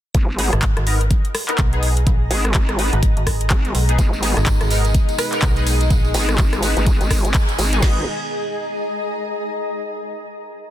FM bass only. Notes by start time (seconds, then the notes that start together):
0.53 G#1
0.77 G#1
1.59 B1
2.07 A#1
2.93 G#1
3.17 G#1
3.75 B1
4.37 G#1
4.61 G#1
5.43 B1
5.91 A#1